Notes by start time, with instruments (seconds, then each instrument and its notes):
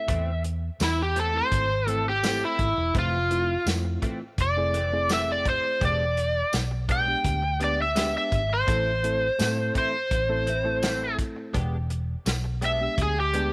Already playing: electric slide guitar E5
0.08 fingered electric bass E2, clean electric guitar E3 A3 C4, kick, closed hi-hat
0.44 muted clean electric guitar stroke, closed hi-hat
0.80 fingered electric bass E2, electric slide guitar E4, muted clean electric guitar stroke, snare, closed hi-hat, tambourine
0.98 muted clean electric guitar stroke
1.02 electric slide guitar G4
1.16 clean electric guitar E3 A3 C4, closed hi-hat
1.20 electric slide guitar A4
1.34 reed electric piano A3 C4 E4 A4, electric slide guitar C5, muted clean electric guitar stroke
1.52 fingered electric bass G#1, kick, closed hi-hat
1.70 muted clean electric guitar stroke
1.87 clean electric guitar E3 A3 C4, reed electric piano A3 C4 E4 A4, electric slide guitar A4, closed hi-hat
2.06 electric slide guitar G4, muted clean electric guitar stroke
2.23 clean electric guitar E3 A3 C4, reed electric piano A3 C4 E4 A4, snare, closed hi-hat, tambourine
2.41 clean electric guitar A3 C4, electric slide guitar E4
2.59 fingered electric bass G#1, muted clean electric guitar stroke, kick, closed hi-hat
2.77 fingered electric bass E1, muted clean electric guitar stroke
2.94 fingered electric bass F1, clean electric guitar E3 A3 C4, reed electric piano A3 C4 E4 F4, kick, closed hi-hat
2.99 electric slide guitar F4
3.30 reed electric piano A3 C4 E4 F4, muted clean electric guitar stroke, closed hi-hat
3.66 fingered electric bass F2, reed electric piano A3 C4 E4 F4, muted clean electric guitar stroke, snare, closed hi-hat, tambourine
3.85 muted clean electric guitar stroke
4.02 clean electric guitar E3 A3 C4, kick, closed hi-hat
4.21 muted clean electric guitar stroke
4.38 fingered electric bass F1, electric slide guitar D5, kick, closed hi-hat
4.57 reed electric piano A3 C4 E4 G#4, muted clean electric guitar stroke
4.74 clean electric guitar E3 A3 C4, closed hi-hat
4.92 reed electric piano A3 C4 E4 G#4, muted clean electric guitar stroke
5.09 clean electric guitar E3 A3 C4, snare, closed hi-hat, tambourine
5.13 electric slide guitar E5
5.28 clean electric guitar A3 C4
5.32 electric slide guitar D5
5.45 muted clean electric guitar stroke, kick, closed hi-hat
5.49 electric slide guitar C5
5.64 muted clean electric guitar stroke
5.81 fingered electric bass E1, clean electric guitar G#3 B3 D4 G4, electric slide guitar D5, kick, closed hi-hat
6.17 muted clean electric guitar stroke, closed hi-hat
6.53 fingered electric bass B1, muted clean electric guitar stroke, snare, closed hi-hat, tambourine
6.71 muted clean electric guitar stroke
6.89 clean electric guitar G#3 B3 D4 G4, electric slide guitar G5, kick, closed hi-hat
7.07 reed electric piano G#3 B3 D4 G4, muted clean electric guitar stroke
7.25 fingered electric bass D2, kick, closed hi-hat
7.42 muted clean electric guitar stroke
7.60 clean electric guitar G#3 B3 D4 G4, reed electric piano G#3 B3 D4 G4, closed hi-hat
7.64 electric slide guitar D5
7.78 electric slide guitar E5, muted clean electric guitar stroke
7.95 clean electric guitar G#3 B3 D4 G4, reed electric piano G#3 B3 D4 G4, snare, closed hi-hat, tambourine
8.14 clean electric guitar D4 G4
8.18 electric slide guitar E5
8.31 fingered electric bass G#1, muted clean electric guitar stroke, kick, closed hi-hat
8.49 muted clean electric guitar stroke
8.54 electric slide guitar C5
8.67 fingered electric bass A1, clean electric guitar E3 C4 E4, reed electric piano A3 C4 E4 A4, kick, closed hi-hat
9.03 reed electric piano A3 C4 E4 A4, muted clean electric guitar stroke, closed hi-hat
9.39 fingered electric bass A2, reed electric piano A3 C4 E4 A4, muted clean electric guitar stroke, snare, closed hi-hat, tambourine
9.57 muted clean electric guitar stroke
9.74 clean electric guitar E3 C4 E4, electric slide guitar C5, kick, closed hi-hat
9.93 muted clean electric guitar stroke
10.11 fingered electric bass A1, kick, closed hi-hat
10.29 reed electric piano A3 C4 E4 A4, muted clean electric guitar stroke
10.47 clean electric guitar E3 C4 E4, closed hi-hat
10.64 reed electric piano A3 C4 E4 A4, muted clean electric guitar stroke
10.83 clean electric guitar E3 C4 E4, snare, closed hi-hat, tambourine
11.01 clean electric guitar C4 E4
11.18 muted clean electric guitar stroke, kick, closed hi-hat
11.36 muted clean electric guitar stroke
11.54 fingered electric bass E1, clean electric guitar G#3 B3 D4 G4, kick, closed hi-hat
11.90 muted clean electric guitar stroke, closed hi-hat
12.26 fingered electric bass B1, muted clean electric guitar stroke, snare, closed hi-hat, tambourine
12.44 muted clean electric guitar stroke
12.61 clean electric guitar G#3 B3 D4 G4, electric slide guitar E5, closed hi-hat
12.80 reed electric piano G#3 B3 D4 G4, muted clean electric guitar stroke
12.98 fingered electric bass D2, kick, closed hi-hat
13.02 electric slide guitar G#4
13.16 electric slide guitar G4, muted clean electric guitar stroke
13.33 clean electric guitar G#3 B3 D4 G4, reed electric piano G#3 B3 D4 G4, closed hi-hat